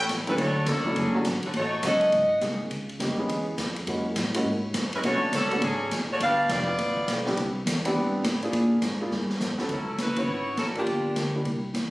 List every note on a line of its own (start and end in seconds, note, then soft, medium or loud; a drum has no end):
0.00 0.35 A1 medium
0.09 snare medium
0.09 hi-hat pedal soft
0.09 ride medium
0.27 0.37 D2 medium
0.27 0.37 F#3 medium
0.27 0.33 G3 medium
0.27 0.37 A3 medium
0.27 0.37 C#4 medium
0.27 0.34 C#4 medium
0.27 0.37 E4 medium
0.27 0.33 E4 medium
0.27 0.34 B4 medium
0.27 ride soft
0.37 0.66 D2 medium
0.37 0.66 A3 medium
0.37 0.66 D4 medium
0.37 0.66 F#4 medium
0.37 0.66 C#5 medium
0.37 kick soft
0.37 ride medium
0.66 0.95 C#2 medium
0.66 0.97 F#3 medium
0.66 0.97 C#4 medium
0.66 0.96 D4 medium
0.66 0.97 A4 medium
0.66 kick soft
0.66 snare medium
0.66 hi-hat pedal medium
0.66 ride medium
0.85 1.13 F#3 medium
0.85 1.13 A3 medium
0.85 1.13 C#4 medium
0.85 1.13 D4 medium
0.85 1.14 E4 medium
0.85 kick medium
0.96 1.24 F#1 medium
0.96 1.26 F#3 medium
0.96 1.26 C#4 medium
0.96 1.26 D4 medium
0.96 1.26 G#4 medium
0.96 kick soft
0.96 ride medium
1.14 1.24 F#3 medium
1.14 1.24 A3 medium
1.14 1.25 C#4 medium
1.14 1.25 D4 medium
1.14 1.25 F#4 medium
1.24 1.42 G#1 medium
1.24 kick soft
1.24 snare medium
1.24 hi-hat pedal medium
1.24 ride medium
1.43 1.54 D3 medium
1.43 1.55 A3 medium
1.43 1.54 C#4 medium
1.43 1.54 F#4 medium
1.43 muted upright bass stroke soft
1.43 ride soft
1.53 1.82 A1 medium
1.53 1.83 A3 medium
1.53 1.83 D#4 medium
1.53 1.83 F#4 medium
1.53 1.83 C#5 loud
1.53 kick soft
1.53 ride medium
1.83 2.11 C#2 medium
1.83 2.13 F#3 soft
1.83 2.13 A3 soft
1.83 2.13 C#4 soft
1.83 2.12 C#4 medium
1.83 2.13 D#4 soft
1.83 2.13 F#4 medium
1.83 2.57 F#4 medium
1.83 2.12 A4 medium
1.83 2.57 D#5 loud
1.83 kick soft
1.83 snare medium
1.83 hi-hat pedal medium
1.83 ride medium
2.01 ride soft
2.12 2.41 G#1 medium
2.12 kick soft
2.12 ride medium
2.41 2.58 C2 medium
2.41 2.58 G#3 medium
2.41 2.58 A#3 medium
2.41 2.59 C4 medium
2.41 2.59 D#4 medium
2.41 2.59 G#4 medium
2.41 kick soft
2.41 snare medium
2.41 hi-hat pedal medium
2.41 ride medium
2.60 muted upright bass stroke soft
2.70 2.99 C#2 medium
2.70 kick soft
2.70 ride medium
2.89 ride soft
3.00 3.28 F#2 medium
3.00 3.16 G3 medium
3.00 3.17 A#3 medium
3.00 3.17 C4 medium
3.00 3.17 D#4 medium
3.00 3.17 G4 medium
3.00 kick soft
3.00 snare medium
3.00 hi-hat pedal medium
3.00 ride medium
3.18 3.44 G#3 medium
3.18 3.44 B3 medium
3.18 3.44 C#4 soft
3.18 3.44 E4 medium
3.18 3.44 G#4 medium
3.29 3.57 E2 medium
3.29 kick soft
3.29 ride medium
3.57 3.86 F2 medium
3.57 kick soft
3.57 snare medium
3.57 hi-hat pedal medium
3.57 ride medium
3.76 ride soft
3.87 4.15 F#2 medium
3.87 4.04 G#3 medium
3.87 4.04 A#3 soft
3.87 4.04 C#4 soft
3.87 4.05 E4 soft
3.87 4.05 F#4 medium
3.87 kick soft
3.87 ride medium
4.15 4.44 A2 medium
4.15 kick soft
4.15 snare medium
4.15 hi-hat pedal medium
4.15 ride medium
4.34 4.45 G#3 medium
4.34 4.45 A#3 medium
4.34 4.45 C#4 medium
4.34 4.45 E4 medium
4.34 4.45 F#4 medium
4.34 ride medium
4.44 4.73 G#2 medium
4.44 kick soft
4.74 5.02 F#2 medium
4.74 kick soft
4.74 snare medium
4.74 hi-hat pedal medium
4.74 ride medium
4.93 5.00 G#3 medium
4.93 5.00 C#4 medium
4.93 5.00 E4 medium
4.93 4.99 B4 medium
4.93 ride soft
5.03 5.20 B1 medium
5.03 5.20 A3 medium
5.03 5.32 A3 medium
5.03 5.20 B3 soft
5.03 5.20 C#4 soft
5.03 5.21 D4 medium
5.03 5.33 D4 medium
5.03 5.21 F#4 medium
5.03 5.32 F#4 medium
5.03 5.32 C#5 medium
5.03 kick soft
5.03 ride medium
5.21 muted upright bass stroke soft
5.32 5.61 C#2 medium
5.32 5.61 F#3 medium
5.32 5.61 C#4 medium
5.32 5.62 D4 medium
5.32 5.61 A4 medium
5.32 kick soft
5.32 snare medium
5.32 hi-hat pedal medium
5.32 ride medium
5.51 5.61 A3 medium
5.51 5.61 B3 medium
5.51 5.62 C#4 medium
5.51 5.62 D4 medium
5.51 5.62 F#4 medium
5.51 ride soft
5.61 5.90 G#1 medium
5.61 5.90 F#3 medium
5.61 5.91 C#4 medium
5.61 5.91 D4 medium
5.61 5.91 G#4 medium
5.61 kick soft
5.61 ride medium
5.91 6.08 A1 medium
5.91 kick soft
5.91 snare medium
5.91 hi-hat pedal medium
5.91 ride medium
6.09 6.21 A3 medium
6.09 6.21 D4 medium
6.09 6.21 F#4 medium
6.09 6.21 C#5 medium
6.09 muted upright bass stroke soft
6.20 6.48 G1 medium
6.20 6.49 D4 medium
6.20 6.49 G4 medium
6.20 6.49 B4 medium
6.20 6.49 F5 loud
6.20 kick soft
6.20 ride medium
6.49 6.78 F1 medium
6.49 7.27 B3 medium
6.49 7.27 F4 medium
6.49 7.27 G4 medium
6.49 7.27 D5 loud
6.49 kick soft
6.49 snare medium
6.49 hi-hat pedal medium
6.49 ride medium
6.78 7.07 A1 medium
6.78 kick soft
6.78 ride medium
6.97 kick medium
7.08 7.36 B1 medium
7.08 kick soft
7.08 snare medium
7.08 hi-hat pedal medium
7.08 ride medium
7.26 7.36 B3 medium
7.26 7.36 C4 medium
7.26 7.36 D4 medium
7.26 7.36 E4 medium
7.26 7.37 G4 medium
7.26 snare medium
7.37 7.65 C2 medium
7.37 kick soft
7.37 ride medium
7.66 7.94 E2 medium
7.66 kick soft
7.66 snare medium
7.66 hi-hat pedal medium
7.66 ride medium
7.85 8.23 B3 medium
7.85 8.23 C4 medium
7.85 8.23 D4 medium
7.85 8.23 E4 medium
7.85 8.23 G4 medium
7.85 ride medium
7.95 8.23 G2 medium
7.95 kick soft
8.24 8.52 A2 medium
8.24 kick soft
8.24 snare medium
8.24 hi-hat pedal medium
8.24 ride medium
8.42 8.80 A#3 medium
8.42 8.81 D4 medium
8.42 8.81 E4 medium
8.42 8.81 F4 medium
8.42 8.81 G#4 medium
8.42 ride soft
8.53 8.81 A#2 medium
8.53 kick soft
8.53 ride medium
8.81 9.10 G#2 medium
8.81 kick soft
8.81 snare medium
8.81 hi-hat pedal medium
8.81 ride medium
9.00 9.10 A#3 medium
9.00 9.10 D4 medium
9.00 9.11 E4 medium
9.00 9.11 F4 medium
9.00 9.11 G#4 medium
9.11 9.40 G2 medium
9.11 snare medium
9.29 snare medium
9.40 9.69 F2 medium
9.40 snare medium
9.40 hi-hat pedal medium
9.58 9.69 B3 medium
9.58 9.69 C#4 soft
9.58 9.69 E4 medium
9.58 9.69 F#4 medium
9.58 9.69 A4 medium
9.58 snare medium
9.69 9.98 C#2 medium
9.69 9.98 F#3 medium
9.69 9.98 C#4 medium
9.69 9.97 E4 medium
9.69 9.97 A4 medium
9.69 kick medium
9.69 ride medium
9.98 10.27 F#1 medium
9.98 10.18 F#3 medium
9.98 10.19 C#4 medium
9.98 10.17 E4 medium
9.98 10.19 B4 medium
9.98 kick soft
9.98 snare medium
9.98 hi-hat pedal medium
9.98 ride medium
10.16 10.55 B3 soft
10.16 10.58 B3 medium
10.16 10.55 C#4 soft
10.16 10.57 E4 medium
10.16 10.56 E4 soft
10.16 10.58 F#4 medium
10.16 10.56 F#4 soft
10.16 10.58 C#5 medium
10.16 kick medium
10.16 ride medium
10.27 10.56 G#1 medium
10.57 10.86 A1 medium
10.57 10.67 F#3 medium
10.57 10.66 C#4 medium
10.57 10.67 E4 medium
10.57 10.67 A4 medium
10.57 kick soft
10.57 snare medium
10.57 hi-hat pedal soft
10.57 ride medium
10.75 11.31 F3 medium
10.75 11.14 A#3 medium
10.75 11.31 A#3 medium
10.75 11.14 D4 soft
10.75 11.32 D4 medium
10.75 11.14 F4 medium
10.75 11.32 G4 medium
10.75 11.14 A#4 medium
10.75 ride soft
10.86 11.15 G1 medium
10.86 kick soft
10.86 ride soft
11.16 11.44 D2 medium
11.16 kick soft
11.16 snare medium
11.16 hi-hat pedal medium
11.16 ride medium
11.34 11.44 A#3 soft
11.34 11.45 D4 soft
11.34 11.45 E4 soft
11.34 11.45 G4 medium
11.45 11.73 C2 medium
11.45 kick soft
11.45 ride soft
11.74 11.90 E2 medium
11.74 kick soft
11.74 snare medium
11.74 hi-hat pedal medium
11.74 ride medium